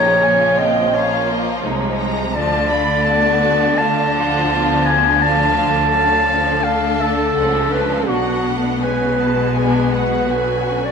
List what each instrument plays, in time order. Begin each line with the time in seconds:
Already playing: double bass section A#1, cello section A#2, viola section C#3 F3, violin section D#4 G4 A#5, clarinet C#5
0.24 violin section C#4 F4 G#5
0.58 violin section C4 G5, clarinet D#5
0.93 violin section A#3 F4 F5, viola section C#4, clarinet C#5
1.30 viola section A#3, violin section D#5
1.64 double bass section C2, cello section C3, viola section G#3, violin section D#4 C#5
1.99 violin section A#5
2.33 double bass section D2, cello section D3, viola section F3 A3, violin section D4 F4 A5, clarinet D5
2.69 viola section A3, violin section B5
3.03 viola section B3, violin section D4 F#4 A5
3.41 violin section D4
3.77 viola section A3, violin section F4 F5, clarinet A5
4.15 viola section F3, violin section F#5
4.50 viola section B3, violin section F5
4.86 clarinet G#5, violin section A5
5.21 viola section F3 A3, violin section D4 F4 F5, clarinet A5
5.92 viola section F#3, violin section C#4 A4 F5
6.29 viola section F3
6.61 viola section A3, violin section D4 A5, clarinet F5
7.01 clarinet A4
7.37 double bass section C#2, cello section C#3, viola section F3 A3, violin section D4 F#5
7.71 viola section F3, clarinet B4, violin section F5
8.07 double bass section B1, cello section B2, viola section F#3 B3, violin section D4 F#5, clarinet F#4
8.46 viola section A3
8.83 viola section G#3 B3, violin section C#4 G#5, clarinet B4
9.21 violin section B3 A5
9.57 violin section D4 G#5, clarinet B4
9.93 violin section F#4 F#5
10.29 viola section D3 F#3, violin section B3 G#5
10.69 violin section C#4
10.85 clarinet D5